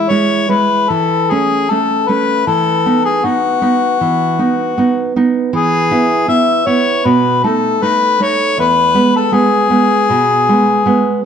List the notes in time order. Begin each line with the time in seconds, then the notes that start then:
Already playing: E4
0.10 G#3 E4 C#5
0.49 G#3 E4 B4
0.89 E3 A4
1.31 A3 C#4 G#4
1.70 A3 C#4 A4
2.08 A3 C#4 B4
2.47 E3 A4
2.86 B3 D#4
3.05 G#4
3.24 B3 D#4 F#4
3.62 B3 D#4
4.01 E3
4.39 B3 D#4
4.78 B3 D#4
5.16 B3 D#4
5.53 E3 G#4
5.91 B3 E4
6.28 B3 E4 E5
6.67 B3 E4 C#5
7.05 B2 B4
7.44 A3 D#4 A4
7.82 A3 D#4 B4
8.20 A3 D#4 C#5
8.58 E2 B4
8.94 G#3 B3
9.16 A4
9.32 G#3 B3 G#4
9.70 G#3 B3
10.10 B2
10.49 G#3 B3
10.86 G#3 B3